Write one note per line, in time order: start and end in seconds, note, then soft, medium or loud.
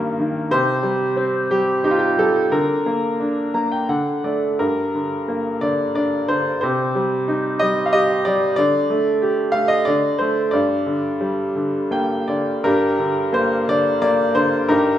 0.00 0.48 G2 medium
0.00 0.20 D#3 soft
0.00 0.48 G3 soft
0.00 0.50 A#3 soft
0.00 0.54 A#4 medium
0.20 0.51 D#3 soft
0.51 2.47 C3 medium
0.51 1.53 C5 medium
0.83 1.49 G3 soft
1.16 2.47 C4 soft
1.51 2.17 G3 soft
1.51 1.83 G4 medium
1.84 2.49 D#4 soft
1.84 1.92 G4 medium
1.91 1.98 F4 medium
1.99 2.19 G4 medium
2.18 2.51 G3 soft
2.18 2.53 A4 medium
2.52 3.84 D3 medium
2.52 3.84 A#4 medium
2.86 3.53 A#3 soft
3.20 3.86 D4 soft
3.54 3.88 A#3 soft
3.54 3.70 A#5 soft
3.72 3.87 G5 soft
3.89 4.57 D3 soft
3.89 4.21 F#5 soft
4.24 4.58 A3 soft
4.24 4.56 D5 soft
4.59 6.58 G2 soft
4.59 5.57 A#4 medium
4.95 5.60 D3 soft
5.28 6.58 A#3 soft
5.61 6.27 D3 soft
5.61 5.94 D5 medium
5.95 6.59 D4 soft
5.95 6.26 D5 medium
6.28 6.60 D3 soft
6.28 6.59 C5 medium
6.61 8.54 C3 medium
6.61 7.63 C5 medium
6.95 7.60 G3 soft
7.28 8.54 D#4 soft
7.59 8.25 G3 soft
7.59 7.87 D#5 medium
7.86 7.93 F5 medium
7.93 8.56 G4 soft
7.93 8.26 D#5 medium
8.25 8.57 G3 soft
8.25 8.55 D5 medium
8.56 9.83 D3 medium
8.56 9.56 D5 medium
8.90 9.53 A3 soft
9.22 9.85 G4 soft
9.52 9.86 A3 soft
9.52 9.70 F5 medium
9.68 9.86 D#5 medium
9.85 10.52 D3 medium
9.85 10.20 D5 medium
10.19 10.53 A3 soft
10.19 10.53 C5 medium
10.51 12.61 G2 medium
10.51 12.24 D5 medium
10.86 11.54 D3 soft
11.21 12.61 G3 soft
11.55 12.27 D3 soft
11.91 12.62 A#3 soft
11.91 12.26 G5 medium
12.28 12.63 D3 soft
12.28 12.62 D5 soft
12.64 14.64 G2 medium
12.64 13.65 D4 medium
12.64 13.65 G4 medium
12.64 13.36 A#4 medium
12.99 13.66 D3 soft
13.33 14.00 A#3 soft
13.33 13.69 C5 medium
13.67 14.34 D3 soft
13.67 14.00 D5 medium
14.02 14.67 A#3 soft
14.02 14.37 D5 medium
14.35 14.68 D3 soft
14.35 14.70 C5 medium
14.69 14.98 G2 medium
14.69 14.98 D#4 medium
14.69 14.98 G4 soft
14.69 14.98 A#4 medium